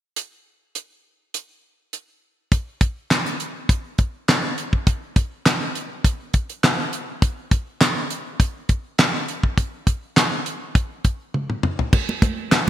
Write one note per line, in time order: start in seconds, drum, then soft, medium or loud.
0.16 closed hi-hat medium
0.75 closed hi-hat medium
1.34 closed hi-hat medium
1.93 closed hi-hat medium
2.52 kick loud
2.52 closed hi-hat medium
2.81 kick loud
2.81 closed hi-hat medium
3.11 snare loud
3.11 clap medium
3.11 closed hi-hat medium
3.26 closed hi-hat medium
3.40 closed hi-hat medium
3.69 kick loud
3.69 closed hi-hat medium
3.98 kick medium
3.98 closed hi-hat medium
4.28 snare loud
4.28 clap medium
4.28 closed hi-hat medium
4.58 closed hi-hat medium
4.73 kick medium
4.87 kick loud
4.87 closed hi-hat medium
5.16 kick medium
5.16 closed hi-hat medium
5.46 snare loud
5.46 clap medium
5.46 closed hi-hat medium
5.75 closed hi-hat medium
6.04 kick loud
6.04 closed hi-hat medium
6.34 kick medium
6.34 closed hi-hat medium
6.49 closed hi-hat soft
6.63 snare loud
6.63 clap medium
6.63 closed hi-hat medium
6.93 closed hi-hat medium
7.22 kick loud
7.22 closed hi-hat medium
7.51 kick loud
7.51 closed hi-hat medium
7.81 snare loud
7.81 clap medium
7.81 closed hi-hat medium
8.10 closed hi-hat medium
8.40 kick loud
8.40 closed hi-hat medium
8.69 kick medium
8.69 closed hi-hat medium
8.98 snare loud
8.98 clap loud
8.98 closed hi-hat medium
9.28 closed hi-hat medium
9.43 kick medium
9.58 kick loud
9.58 closed hi-hat medium
9.87 kick medium
9.87 closed hi-hat medium
10.17 snare loud
10.17 clap medium
10.17 closed hi-hat medium
10.46 closed hi-hat medium
10.75 kick loud
10.75 closed hi-hat medium
11.04 kick medium
11.04 closed hi-hat medium
11.34 high tom medium
11.50 mid tom medium
11.63 mid tom medium
11.79 floor tom medium
11.93 kick loud
11.93 crash medium
11.93 muted conga soft
12.09 muted conga soft
12.22 kick medium
12.22 closed hi-hat medium
12.22 high conga soft
12.52 snare loud
12.52 clap medium
12.52 closed hi-hat medium
12.52 muted conga soft